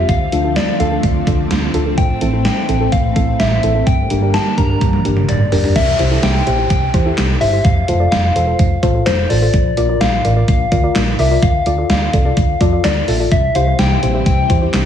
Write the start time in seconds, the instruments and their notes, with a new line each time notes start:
Already playing: string machine F4, soft synth lead E5
0.09 fretless electric bass D2, string machine D3 F3 A3 C4, soft synth lead F5, kick, closed hi-hat
0.32 fretless electric bass D2, synth pluck D4 F4 A4, closed hi-hat
0.44 synth pluck D4 F4 A4
0.56 soft synth lead D5, snare, closed hi-hat
0.80 fretless electric bass D2, synth pluck D4 F4 A4, soft synth lead F5, closed hi-hat
0.91 synth pluck D4 F4 A4
1.03 fretless electric bass D2, kick, closed hi-hat
1.27 fretless electric bass D2, synth pluck D4 F4 A4, kick, closed hi-hat
1.50 fretless electric bass D2, snare, closed hi-hat
1.74 fretless electric bass D2, synth pluck D4 F4 A4, closed hi-hat
1.86 synth pluck D4 F4 A4
1.98 fretless electric bass A1, string machine E3, soft synth lead G5, kick, closed hi-hat
2.21 fretless electric bass A1, synth pluck C4 E4 A4, closed hi-hat
2.33 synth pluck C4 E4 A4
2.45 soft synth lead G5, snare, closed hi-hat
2.69 fretless electric bass A1, synth pluck C4 E4 A4, closed hi-hat
2.80 synth pluck C4 E4 A4
2.92 fretless electric bass A1, soft synth lead F5, kick, closed hi-hat
3.16 fretless electric bass A1, synth pluck C4 E4 A4, soft synth lead F5, kick, closed hi-hat
3.39 fretless electric bass A1, soft synth lead E5, snare, closed hi-hat
3.63 fretless electric bass A1, synth pluck C4 E4 A4, closed hi-hat
3.75 synth pluck C4 E4 A4
3.86 fretless electric bass G1, string machine D3 G3 A#3, soft synth lead G5, kick, closed hi-hat
4.10 fretless electric bass G1, synth pluck D4 G4 A#4, closed hi-hat
4.22 synth pluck D4 G4 A#4
4.34 soft synth lead A5, snare, closed hi-hat
4.58 fretless electric bass G1, synth pluck D4 G4 A#4, soft synth lead A#5, kick, closed hi-hat
4.69 synth pluck D4 G4 A#4
4.81 fretless electric bass G1, kick, closed hi-hat, high tom
4.93 high tom
5.05 fretless electric bass G1, synth pluck D4 G4 A#4, closed hi-hat
5.17 mid tom
5.29 fretless electric bass G1, soft synth lead D5, closed hi-hat, mid tom
5.52 fretless electric bass G1, synth pluck D4 G4 A#4, floor tom, open hi-hat
5.64 synth pluck D4 G4 A#4, floor tom
5.76 fretless electric bass C2, soft synth lead E5, kick, closed hi-hat, crash, downlifter
5.99 fretless electric bass C2, synth pluck E4 G4 C5, closed hi-hat
6.11 synth pluck E4 G4 A4
6.23 fretless electric bass C2, soft synth lead G5, snare, closed hi-hat
6.47 fretless electric bass A#1, synth pluck E4 G4 C5, closed hi-hat
6.59 synth pluck E4 G4 C5
6.70 fretless electric bass C2, soft synth lead G5, kick, closed hi-hat
6.94 fretless electric bass E2, synth pluck E4 G4 C5, kick, closed hi-hat
7.06 synth pluck E4 G4 A4
7.17 fretless electric bass C2, snare, clap, closed hi-hat
7.41 fretless electric bass G1, synth pluck E4 G4 C5, soft synth lead E5, open hi-hat
7.53 synth pluck E4 G4 C5
7.64 fretless electric bass F1, soft synth lead F5, kick, closed hi-hat
7.88 fretless electric bass F1, synth pluck F4 A4 C5, closed hi-hat
8.00 synth pluck F4 A4 D5
8.11 fretless electric bass F1, soft synth lead F5, snare, closed hi-hat
8.35 fretless electric bass E1, synth pluck F4 A4 C5, closed hi-hat
8.47 synth pluck F4 A4 C5
8.59 fretless electric bass F1, kick, closed hi-hat
8.83 fretless electric bass A1, synth pluck F4 A4 C5, kick, closed hi-hat
8.94 synth pluck F4 A4 C5
9.06 fretless electric bass F1, soft synth lead C5, snare, clap, closed hi-hat
9.30 fretless electric bass A1, synth pluck F4 A4 C5, soft synth lead D5, open hi-hat
9.42 synth pluck F4 A4 C5
9.54 fretless electric bass A#1, kick, closed hi-hat
9.77 fretless electric bass A#1, synth pluck F4 A#4 D5, closed hi-hat
9.89 synth pluck F4 A#4 D5
10.01 fretless electric bass A#1, soft synth lead F5, snare, closed hi-hat
10.24 fretless electric bass A1, synth pluck F4 A#4 D5, closed hi-hat
10.36 synth pluck F4 A#4 D5
10.48 fretless electric bass A#1, soft synth lead F5, kick, closed hi-hat
10.72 fretless electric bass D2, synth pluck F4 A#4 D5, kick, closed hi-hat
10.83 synth pluck F4 A#4 D5
10.95 fretless electric bass A#1, snare, clap, closed hi-hat
11.19 fretless electric bass C2, synth pluck F4 A#4 D5, soft synth lead E5, open hi-hat
11.31 synth pluck F4 A#4 D5
11.42 fretless electric bass D2, soft synth lead F5, kick, closed hi-hat
11.66 fretless electric bass D2, synth pluck F4 A4 D5, closed hi-hat
11.78 synth pluck F4 A4 D5
11.90 fretless electric bass D2, soft synth lead F5, snare, closed hi-hat
12.13 fretless electric bass C2, synth pluck F4 A4 D5, kick, closed hi-hat
12.25 synth pluck F4 A4 D5
12.37 fretless electric bass D2, kick, closed hi-hat
12.61 fretless electric bass F2, synth pluck F4 A4 D5, kick, closed hi-hat
12.73 synth pluck F4 A4 D5
12.84 fretless electric bass D2, soft synth lead D5, snare, clap, closed hi-hat
13.08 fretless electric bass A#1, synth pluck F4 A4 E5, open hi-hat
13.20 synth pluck F4 A4 D5
13.32 fretless electric bass C2, string machine E3 G3 C4, soft synth lead E5, kick, closed hi-hat
13.55 fretless electric bass C2, synth pluck E4 G4 C5, soft synth lead F5, closed hi-hat
13.67 synth pluck E4 G4 C5
13.79 fretless electric bass C2, soft synth lead G5, snare, closed hi-hat
14.02 fretless electric bass A#1, synth pluck E4 G4 C5, closed hi-hat
14.14 synth pluck E4 G4 C5
14.26 fretless electric bass C2, soft synth lead G5, kick, closed hi-hat
14.50 fretless electric bass E2, synth pluck E4 G4 C5, kick, closed hi-hat
14.62 synth pluck E4 G4 C5
14.73 fretless electric bass C2, snare, clap, closed hi-hat